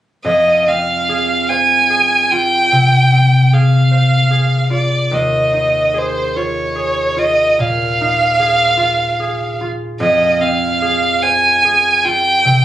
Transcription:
0.24 4.14 F2 soft
0.24 0.69 D#5 soft
0.67 3.11 C4 soft
0.67 1.50 F5 soft
1.09 1.89 G#4 soft
1.49 3.90 C5 soft
1.49 2.33 G#5 soft
1.90 3.52 G#4 soft
2.31 4.69 F4 soft
2.31 3.55 G5 medium
2.72 5.16 C3 soft
3.12 5.16 C4 soft
3.53 4.29 G#4 soft
3.53 4.72 F5 medium
3.91 5.16 C5 soft
4.30 5.93 G#4 soft
4.70 6.35 F4 soft
4.70 5.16 D5 soft
5.11 9.01 D#2 soft
5.11 5.99 D#5 soft
5.53 8.00 D#4 soft
5.94 6.74 G#4 soft
5.98 6.38 C5 soft
6.36 7.15 F4 soft
6.36 7.20 C#5 soft
6.75 8.38 G#4 soft
7.17 8.76 F4 soft
7.17 7.61 D#5 soft
7.59 10.04 A#2 soft
7.59 9.61 F5 medium
8.01 10.05 D#4 soft
8.39 9.18 G#4 soft
8.77 9.60 F4 soft
9.20 10.81 G#4 soft
9.61 12.04 F4 soft
10.00 12.65 F2 soft
10.00 10.43 D#5 soft
10.40 12.65 C4 soft
10.40 11.24 F5 soft
10.82 11.63 G#4 soft
11.22 12.65 C5 soft
11.22 12.06 G#5 soft
11.65 12.65 G#4 soft
12.04 12.65 F4 soft
12.04 12.65 G5 medium
12.45 12.65 C3 soft

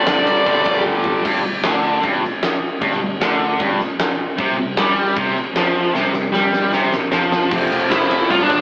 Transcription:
0.00 0.44 G2 medium
0.00 0.45 D3 loud
0.00 0.46 G3 loud
0.00 0.82 D4 medium
0.00 0.82 D5 medium
0.06 0.23 G1 medium
0.06 snare loud
0.06 ride loud
0.26 0.42 G2 medium
0.26 ride medium
0.45 0.62 G1 medium
0.45 1.23 G2 medium
0.45 1.24 D3 medium
0.45 1.24 G3 medium
0.45 kick medium
0.45 ride loud
0.65 0.82 F2 medium
0.65 kick medium
0.65 ride medium
0.84 1.17 G1 loud
0.84 high tom medium
1.04 floor tom loud
1.25 1.41 G1 medium
1.25 1.43 G2 loud
1.25 kick loud
1.25 crash loud
1.25 crash medium
1.42 1.61 G1 medium
1.42 1.60 G2 medium
1.62 1.99 D2 medium
1.62 2.03 D3 loud
1.62 snare loud
1.62 crash medium
2.03 2.21 G1 medium
2.03 2.22 G2 loud
2.03 kick loud
2.03 crash medium
2.24 snare soft
2.43 snare loud
2.43 crash medium
2.81 2.99 G1 medium
2.81 3.00 G2 loud
2.81 kick loud
2.81 crash medium
2.91 snare soft
3.00 3.18 G1 medium
3.00 3.17 G2 medium
3.19 3.56 D2 loud
3.19 3.59 D3 loud
3.19 snare loud
3.19 crash medium
3.59 3.77 G1 loud
3.59 3.79 G2 loud
3.59 kick loud
3.59 crash medium
3.80 snare soft
3.99 snare loud
3.99 crash medium
4.38 4.56 C2 medium
4.38 4.57 C3 loud
4.38 kick loud
4.38 crash medium
4.56 4.75 C2 medium
4.56 4.74 C3 medium
4.76 5.13 G2 loud
4.76 5.17 G3 loud
4.76 snare loud
4.76 crash medium
5.16 5.34 C2 loud
5.16 5.36 C3 loud
5.16 kick loud
5.16 crash medium
5.36 snare soft
5.54 5.91 F2 loud
5.54 5.94 F3 loud
5.54 snare loud
5.54 crash medium
5.94 6.11 C2 medium
5.94 6.13 C3 loud
5.94 snare medium
6.12 6.29 C2 medium
6.12 6.30 C3 medium
6.12 snare medium
6.30 6.68 G2 medium
6.30 6.72 G3 loud
6.30 snare medium
6.53 snare medium
6.71 6.90 C2 medium
6.71 6.92 C3 medium
6.71 snare medium
6.92 snare medium
7.11 7.48 F2 loud
7.11 7.51 F3 loud
7.11 snare loud
7.32 snare loud
7.51 7.67 F1 medium
7.51 8.29 F2 medium
7.51 8.29 C3 medium
7.51 8.32 F3 loud
7.51 kick loud
7.51 crash loud
7.70 7.86 F1 medium
7.70 ride medium
7.89 8.06 F1 medium
7.89 8.31 E4 loud
7.89 8.26 E5 medium
7.89 snare loud
7.89 ride loud
8.10 8.26 F1 medium
8.10 ride loud
8.29 8.46 C2 loud
8.29 8.61 F2 medium
8.29 8.61 C3 medium
8.29 8.61 F3 medium
8.29 8.39 F4 loud
8.29 8.39 F5 medium
8.29 kick medium
8.29 ride loud
8.42 8.61 D4 loud
8.42 8.61 D5 medium
8.49 8.61 F1 medium
8.49 kick medium
8.49 ride medium

